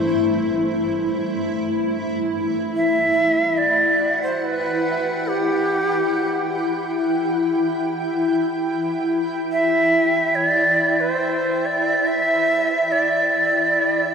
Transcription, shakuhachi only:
2.76 3.59 E5 medium
3.58 4.22 D5 medium
4.22 4.37 C5 medium
4.37 4.46 C5 medium
4.45 5.29 B4 medium
5.28 6.97 G4 medium
9.52 10.37 E5 loud
10.35 10.46 C#5 loud
10.46 11.02 D5 loud
11.00 11.67 C5 medium
11.66 12.09 D5 medium
12.07 12.93 E5 loud
12.92 14.14 D5 medium

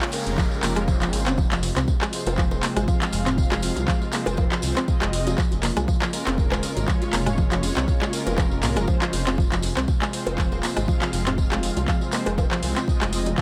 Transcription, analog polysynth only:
0.00 0.10 G#3 medium
0.00 0.10 C#4 medium
0.00 0.10 F4 medium
0.00 0.10 C#5 loud
0.13 0.60 G#3 medium
0.13 0.60 C#4 medium
0.13 0.60 F4 medium
0.13 0.60 A#4 loud
0.63 0.85 G#3 loud
0.63 0.85 C#4 medium
0.63 0.85 F4 medium
0.63 0.85 A#4 loud
0.88 1.37 G#3 loud
0.88 1.37 C#4 medium
0.88 1.37 F4 medium
0.88 1.37 C5 loud
2.13 2.85 G#3 medium
2.13 2.85 C4 medium
2.13 2.85 F4 medium
2.13 2.85 C5 loud
2.88 4.10 G#3 medium
2.88 4.10 C4 medium
2.88 4.10 F4 medium
2.88 4.10 F5 loud
4.13 4.60 G#3 loud
4.13 4.60 C4 medium
4.13 4.60 F4 medium
4.13 4.60 C5 loud
4.63 4.85 G#3 loud
4.63 4.85 C4 medium
4.63 4.85 F4 medium
4.63 4.85 C5 loud
4.88 5.36 G#3 loud
4.88 5.36 C4 medium
4.88 5.37 F4 medium
4.88 5.36 D#5 loud
6.13 6.85 G#3 loud
6.13 6.85 C#4 medium
6.13 6.85 F4 medium
6.13 6.85 A#4 loud
6.88 8.10 G#3 medium
6.88 8.10 C#4 medium
6.88 8.10 F4 medium
6.88 8.10 C#5 loud
8.13 8.60 G#3 medium
8.13 8.60 C#4 medium
8.13 8.60 F4 medium
8.13 8.60 A#4 loud
8.63 8.85 G#3 loud
8.63 8.85 C#4 medium
8.63 8.85 F4 medium
8.63 8.85 A#4 loud
8.88 9.37 G#3 loud
8.88 9.37 C#4 medium
8.88 9.37 F4 medium
8.88 9.37 C5 loud
10.13 10.85 G#3 medium
10.13 10.85 C4 medium
10.13 10.85 F4 medium
10.13 10.85 C5 loud
10.88 12.10 G#3 medium
10.88 12.10 C4 medium
10.88 12.10 F4 medium
10.88 12.10 F5 loud
12.13 12.60 G#3 medium
12.13 12.60 C4 medium
12.13 12.60 F4 medium
12.13 12.60 C5 loud
12.63 12.85 G#3 loud
12.63 12.85 C4 medium
12.63 12.85 F4 medium
12.63 12.85 C5 loud
12.88 13.36 G#3 loud
12.88 13.37 C4 medium
12.88 13.37 F4 medium
12.88 13.37 D#5 loud

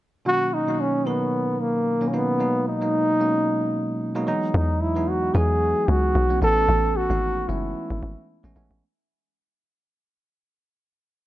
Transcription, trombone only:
0.27 0.55 F#4 loud
0.54 0.82 D#4 loud
0.80 1.09 C#4 loud
1.07 1.63 B3 loud
1.61 2.10 A#3 loud
2.08 2.16 C#4 medium
2.15 2.67 B3 loud
2.68 4.24 D#4 loud
4.56 4.84 D#4 loud
4.82 5.11 E4 medium
5.09 5.38 F#4 loud
5.36 5.91 G#4 loud
5.89 6.42 F#4 loud
6.43 6.98 A4 loud
6.97 7.52 F#4 loud
7.50 8.30 E4 medium

